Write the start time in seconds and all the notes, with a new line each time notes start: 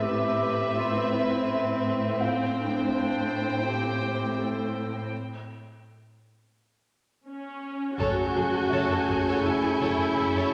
Already playing: A2 C4 B4 E5
0.02 G4
0.76 F4
1.13 E4
2.20 F4 C5 F5 G5
2.58 D4
3.66 G4
4.39 A4
7.28 C#4
7.98 F#1 F#2 A3 F#4 G#4 A4 C#5 G#5 C#6 G6, taiko
8.35 F#1 F#2 F#3 G#4 A4
8.53 F#2 A4
8.69 F#1 F#2 A4 C#5 E5
8.89 F#2 A4
9.06 F#1 F#2 G#4 A4, taiko
9.25 F#2 A4 C#5
9.42 F#1 F#2 E4 A4
9.61 F#2 G#4 A4
9.78 F#1 F#2 A4 C#5
9.97 F#2 A4
10.14 F#1 F#2 G#4 A4
10.34 F#2 A4 C#5